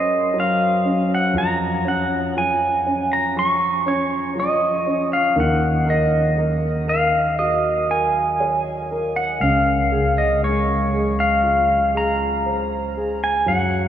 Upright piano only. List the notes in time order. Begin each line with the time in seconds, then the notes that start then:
Already playing: F#3 C#4 A#4
0.34 F#3
0.85 C#4
1.34 F3
1.85 C#4
2.37 F3
2.86 C#4
3.36 F3
3.86 C#4
4.35 F3
4.87 C#4
5.36 D#3
5.86 A#4
6.38 A#3
6.87 A#4
7.39 F#4
7.90 A#4
8.40 C#5
8.91 A#4
9.43 C#3
9.92 G#4
10.43 G#3
10.93 G#4
11.44 F4
11.94 G#4
12.46 C5
12.97 G#4
13.46 F#3